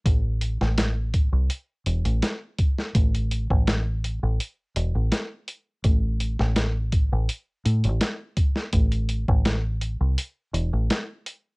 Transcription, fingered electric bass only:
\new Staff \with { instrumentName = "Fingered electric bass" } { \clef bass \time 4/4 \key a \minor \tempo 4 = 83 a,,8. a,,4 c,16 r8 e,,16 a,,16 r4 | a,,8. a,,4 a,,16 r8 e,,16 a,,16 r4 | a,,8. a,,4 a,,16 r8 a,16 a,,16 r4 | a,,8. a,,4 c,16 r8 e,,16 a,,16 r4 | }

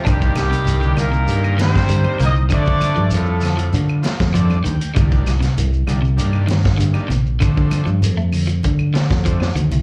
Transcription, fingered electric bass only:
\new Staff \with { instrumentName = "Fingered electric bass" } { \clef bass \time 4/4 \key c \dorian \tempo 4 = 98 c,8 c,16 r16 c,8 c,8 g,4 g,16 r16 c,8 | r16 d8 g,16 f,4 d8 r16 f,8. d,16 r16 | c,8 c,16 r16 c,8 c,8 g,4 g,16 r16 bes,,8 | r16 d8 g,16 f,4 d8 r16 f,8. d,16 c,16 | }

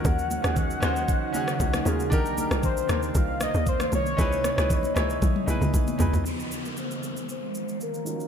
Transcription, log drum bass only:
\new Staff \with { instrumentName = "Log drum bass" } { \clef bass \time 4/4 \key ees \major \tempo 4 = 116 ees,8. ees,8. ees,8 r4 des,8 ees,8 | c,8. c,8. ees,8 c,8. ees,8. c,8 | des,8. des,8. des,8 ces,16 r16 c,16 des,16 ces,16 r16 des,16 des,16 | r1 | }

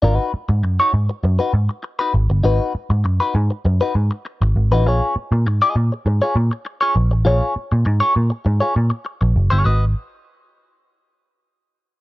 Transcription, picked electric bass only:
\new Staff \with { instrumentName = "Picked electric bass" } { \clef bass \time 4/4 \key gis \dorian \tempo 4 = 100 gis,,16 r8 gis,16 fis,16 r16 gis,16 r16 fis,16 r16 gis,16 r8. gis,,16 g,,16 | gis,,16 r8 gis,16 fis,16 r16 gis,16 r16 fis,16 r16 gis,16 r8 gis,,16 gis,,16 a,,16 | ais,,16 r8 ais,16 gis,16 r16 ais,16 r16 gis,16 r16 ais,16 r8. ais,,16 a,,16 | ais,,16 r8 ais,16 gis,16 r16 ais,16 r16 gis,16 r16 ais,16 r8 ais,,16 fis,,16 g,,16 |
gis,,8 r2. r8 | }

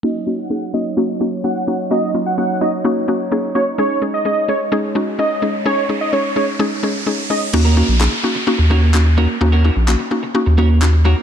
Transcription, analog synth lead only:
\new Staff \with { instrumentName = "Analog synth lead" } { \time 4/4 \key ees \minor \tempo 4 = 128 ees''8 r16 ges''16 ges''8 ees''16 r4 r16 ges''8. r16 | ees''8 r16 ges''16 ges''8 ees''16 r4. r16 des''16 r16 | des''8 r16 ees''16 ees''8 des''16 r4 r16 ees''8. r16 | des''8 r16 ees''16 des''8 des''16 r4. r16 ees''16 r16 |
r1 | r1 | }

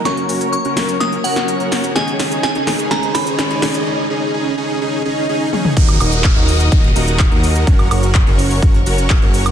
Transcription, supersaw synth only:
\new Staff \with { instrumentName = "Supersaw synth" } { \time 4/4 \key ees \minor \tempo 4 = 126 <des' ges' bes'>8 <des' ges' bes'>8 r16 <des' ges' bes'>8. <des' ges' bes'>16 r16 <des' ges' bes'>8. <des' ges' bes'>8. | <des' ees' aes'>8 <des' ees' aes'>8 r16 <des' ees' aes'>8. <des' ees' aes'>8 <des' ees' aes'>8 r16 <des' ees' aes'>8. | <des' ees' aes'>8 <des' ees' aes'>8 <des' ees' aes'>8 <des' ees' aes'>8 <des' ees' aes'>8 <des' ees' aes'>8 <des' ees' aes'>8 <des' ees' aes'>8 | <ges' bes'>8 <ees' ges' bes'>8 r16 <ees' ges' bes'>8. <ees' ges' bes'>16 r16 <ees' ges' bes'>8. <ees' ges' bes'>8. |
<des' ges' bes'>8 <des' ges' bes'>8 r16 <des' ges' bes'>8. <des' ges'>16 r16 <des' ges' bes'>8. <des' ges' bes'>8. | }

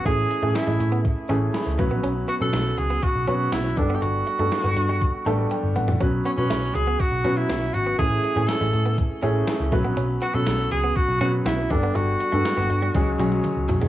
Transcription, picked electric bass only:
\new Staff \with { instrumentName = "Picked electric bass" } { \clef bass \time 4/4 \key b \dorian \tempo 4 = 121 a,,8 r16 a,16 r16 a,,16 a,8. r16 a,,8 r16 cis,16 b,,16 ais,,16 | b,,8 r16 b,16 b,,8 cis,8 r16 b,,16 b,8 b,,8 g,,8 | g,,8 r16 g,16 r16 g,,16 g,8. r16 a,,8 r16 g,,16 a,,16 ais,,16 | b,,8 r16 b,16 b,,8 cis,8 r16 b,,16 b,8 b,,8 gis,,8 |
a,,8 r16 a,16 r16 a,,16 a,8. r16 a,,8 r16 cis,16 b,,16 ais,,16 | b,,8 r16 b,16 b,,8 cis,8 r16 b,,16 b,8 b,,8 g,,8 | g,,8 r16 g,16 r16 g,,16 g,8 cis,8 b,,8 r16 cis,16 b,,16 bis,,16 | }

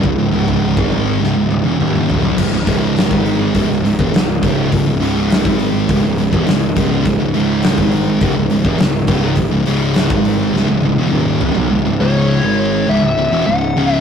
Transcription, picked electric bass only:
\new Staff \with { instrumentName = "Picked electric bass" } { \clef bass \time 4/4 \key cis \minor \tempo 4 = 103 cis,,16 cis,,16 cis,,8. gis,,8. cis,,16 cis,,16 cis,,16 e,,16 dis,,8 e,,16 b,,16 | cis,,16 cis,,16 cis,,8. gis,,8. cis,,16 cis,,16 cis,,16 e,,16 cis,,8 cis,,8 | cis,,16 cis,,16 cis,,8. gis,,8. cis,,16 cis,,16 cis,,16 e,,16 cis,,8 cis,,8 | cis,,16 cis,,16 cis,,8. gis,,8. cis,,16 cis,,16 cis,,16 e,,16 cis,,8 cis,,8 |
cis,,16 cis,,16 cis,,8. gis,,8. cis,,16 cis,,16 cis,,16 e,,16 dis,,8 e,,16 b,,16 | cis,,16 cis,,16 cis,,8. gis,,8. cis,,16 cis,,16 cis,,16 e,,16 cis,,8 cis,,8 | }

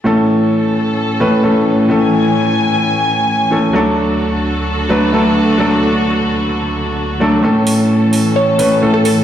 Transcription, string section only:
\new Staff \with { instrumentName = "String section" } { \time 4/4 \key a \major \tempo 4 = 130 << { a'1 | gis''1 | a'1~ | a'1 |
a'1 | } \\ { <a, e cis'>1~ | <a, e cis'>1 | <d, d fis'>1~ | <d, d fis'>1 |
<a, e cis'>1 | } >> }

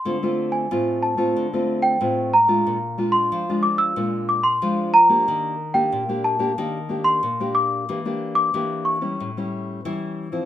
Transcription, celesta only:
\new Staff \with { instrumentName = "Celesta" } { \time 4/4 \key d \minor \tempo 4 = 92 c'''8. gis''8. a''4~ a''16 g''8. bes''8~ | bes''8. c'''8. d'''16 e'''8. d'''16 c'''8. bes''8~ | bes''8. g''8. a''4~ a''16 c'''8. d'''8~ | d'''8. d'''8. cis'''2 r8 | }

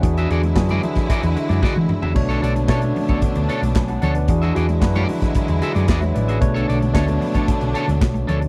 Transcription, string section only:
\new Staff \with { instrumentName = "String section" } { \clef bass \time 4/4 \key b \dorian \tempo 4 = 113 <d fis gis e'>1 | <d a b d'>1 | <d fis gis e'>1 | <d a b d'>1 | }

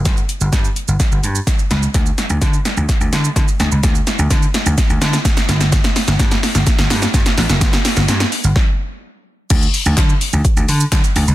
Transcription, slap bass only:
\new Staff \with { instrumentName = "Slap bass" } { \clef bass \time 4/4 \key g \lydian \tempo 4 = 127 g,,8 r16 g,,16 g,8 r16 g,,16 r16 g,,16 g,8 r8 cis,8 | d,8 r16 d,16 d8 r16 d,16 r16 d,16 d8 d16 r16 d,16 cis,16 | d,8 r16 d,16 d8 r16 d,16 r16 d,16 d8 r8 g,,8~ | g,,8 r16 g,,16 g,8 r16 g,,16 r16 g,,16 g,8 g,16 r16 a,,16 fis,,16 |
g,,8 r16 g,,16 g,8 r16 g,,16 r2 | d,8 r16 d,16 d8 r16 d,16 r16 d,16 d8 d16 r16 d,16 cis,16 | }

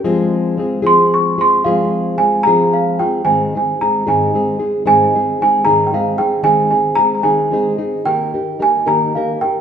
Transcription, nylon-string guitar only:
\new Staff \with { instrumentName = "Nylon-string guitar" } { \time 6/8 \key f \minor \tempo 4. = 75 <f aes c' f' aes'>4 <aes c' f' aes'>8 <f aes c' f' aes'>4 <c' f' aes'>8 | <f aes c' f' aes'>4 <aes c' f' aes'>8 <f aes c' f' aes'>4 <c' f' aes'>8 | \key aes \major <aes, ees aes c' ees' aes'>8 <aes c' ees' aes'>8 <aes c' ees' aes'>8 <aes, ees aes c' ees' aes'>8 <aes c' ees' aes'>8 <aes c' ees' aes'>8 | <aes, ees aes c' ees' aes'>8 <aes c' ees' aes'>8 <aes c' ees' aes'>8 <aes, ees aes c' ees' aes'>8 <aes c' ees' aes'>8 <aes c' ees' aes'>8 |
<ees aes c' ees' aes'>8 <c' ees' aes'>8 <aes c' ees' aes'>8 <ees aes c' ees' aes'>8 <aes c' ees' aes'>8 <c' ees' aes'>8 | <ees bes ees' g' bes'>8 <ees' g' bes'>8 <bes ees' g' bes'>8 <ees bes ees' g' bes'>8 <bes ees' g' bes'>8 <ees' g' bes'>8 | }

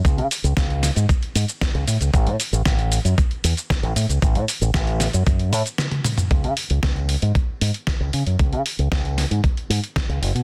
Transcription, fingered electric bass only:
\new Staff \with { instrumentName = "Fingered electric bass" } { \clef bass \time 4/4 \key cis \minor \tempo 4 = 115 cis,16 cis16 r16 cis,16 cis,8 r16 gis,16 r8 gis,16 r8 cis,16 a,16 cis,16 | a,,16 a,16 r16 a,,16 a,,8 r16 fis,16 r8 e,16 r8 a,,16 a,16 cis,16 | a,,16 a,16 r16 a,,16 a,,8 r16 fis,16 fis,8 a,16 r4 r16 | cis,16 cis16 r16 cis,16 r8. gis,16 r8 gis,16 r8 cis,16 cis16 fis,16 |
cis,16 cis16 r16 cis,16 r8. gis,16 r8 gis,16 r8 cis,16 fis,,16 b,16 | }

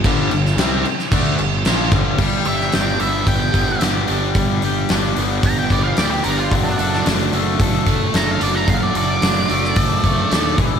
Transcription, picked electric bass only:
\new Staff \with { instrumentName = "Picked electric bass" } { \clef bass \time 4/4 \key c \major \tempo 4 = 111 g,,8 g,,8 c,8 r8 d,8 g,,8 bes,,8 g,,8 | \key g \major g,,8 g,,8 g,,8 g,,8 g,,8 g,,8 g,,8 g,,8 | g,,8 g,,8 g,,8 g,,8 g,,8 g,,8 d,8 g,,8 | fis,,8 fis,,8 fis,,8 fis,,8 fis,,8 fis,,8 fis,,8 fis,,8 |
fis,,8 fis,,8 fis,,8 fis,,8 fis,,8 fis,,8 ees,8 e,,8 | }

